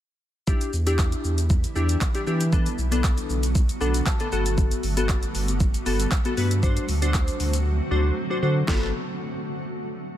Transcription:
0.47 D3 E3 G3 B3 D4 E4 G4, kick, shaker
0.61 closed hi-hat, shaker
0.73 E2, shaker
0.86 D4 E4 G4, closed hi-hat, shaker
0.99 kick, clap, shaker
1.12 closed hi-hat, shaker
1.24 E2, shaker
1.38 closed hi-hat, shaker
1.50 kick, shaker
1.64 closed hi-hat, shaker
1.75 E2 D4 E4 G4, shaker
1.89 closed hi-hat, shaker
2.01 kick, clap, shaker
2.15 D4 E4 G4, closed hi-hat, shaker
2.27 E3 D4 E4 G4, shaker
2.41 closed hi-hat, shaker
2.52 F#3 A3 B3 D4 F#4 A4, kick, shaker
2.66 closed hi-hat, shaker
2.78 B1, shaker
2.91 B3 D4 A4, closed hi-hat, shaker
3.04 kick, clap, shaker
3.18 closed hi-hat, shaker
3.30 B1, shaker
3.43 closed hi-hat, shaker
3.55 kick, shaker
3.69 closed hi-hat, shaker
3.81 B1 B3 D4 A4 F#5, shaker
3.94 closed hi-hat, shaker
4.06 A5, kick, clap, shaker
4.20 B3 D4 A4, closed hi-hat, shaker
4.32 G1 G3 B3 F#4 A4, shaker
4.46 closed hi-hat, shaker
4.58 kick, shaker
4.71 closed hi-hat, shaker
4.83 G1, open hi-hat, shaker
4.97 B3 F#4 A4, closed hi-hat, shaker
5.09 kick, clap, shaker
5.23 closed hi-hat, shaker
5.35 G1, open hi-hat, shaker
5.48 closed hi-hat, shaker
5.60 kick, shaker
5.74 closed hi-hat, shaker
5.86 G1 B3 F#4 A4, open hi-hat, shaker
6.00 closed hi-hat, shaker
6.11 kick, clap, shaker
6.25 B3 F#4 A4, closed hi-hat, shaker
6.37 G2 B3 F#4 B4, open hi-hat, shaker
6.51 closed hi-hat, shaker
6.63 F#3 C4 D4 F#4 C5, kick, shaker
6.77 closed hi-hat, shaker
6.89 D2, open hi-hat, shaker
7.02 D4 F#4 C5, closed hi-hat, shaker
7.14 kick, clap, shaker
7.28 closed hi-hat, shaker
7.40 D2, open hi-hat, shaker
7.53 closed hi-hat, shaker
7.91 D2 D4 F#4 C5
8.30 D4 F#4 C5
8.42 D3 D4 F#4 C5
8.68 G1 B3 F#4 A4, kick, snare, clap

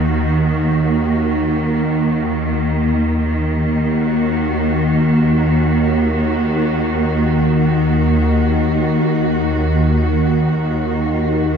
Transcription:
Already playing: D#2 D#3 A#3 F#4
2.55 D#2 D#3
3.89 F#4

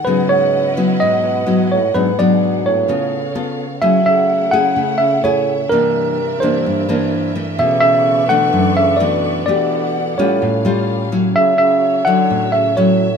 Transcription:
Already playing: F#5
0.04 G#2 C#3 F#3 B3 C#4 E4 B4 D#5
0.26 G#2 C#5
0.77 F#3 B3 E4
1.00 G#2 B2 D#5
1.46 F#3 B3 E4
1.72 A2 C#5
1.94 G#2 F#3 B3 D4 G#4 B4
2.18 B2 F#3 B3 D4 D5
2.66 A2 C#5
2.87 C#3 B3 F4 A4 C#5 F5
3.35 B3 F4 A4
3.81 C#3 F#3 A3 E4 G#4 E5 F#5
4.04 C#3 E5
4.51 C#3 A3 E4 G#4 F#5
4.76 C#3
4.98 C#3 E5
5.20 A2 A3 C#5
5.25 E4 G#4
5.69 G2 C3 E3 A#3 C4 A#4 D5
5.73 D4
6.37 G2 C5
6.42 E3 A#3 D4
6.66 G2
6.89 E3 A#3 D4
7.36 E3 A3
7.57 B2 C#3 A4 B4 D5 E5 C#6
7.80 C#3 E5
8.27 D3 E3 A3 D4 F#5
8.53 F#2
8.75 C#3 E5
8.97 B2 E3 D5
9.01 A3 D4
9.46 B2 E3 A3 D4 G4 D5 F#5
10.17 A2 G3 C#4 F4 C#5
10.42 A2 C#4 G4 F5
10.65 G3 C#4 F4
11.12 F#3 C#4 E4
11.34 C#3 F#4 C#5 E5
11.57 C#3 E5
12.05 D3 F#3 C#4 E4 F#5
12.30 A2
12.51 C#3 E5
12.76 A2 F#3 C#4 E4 C#5

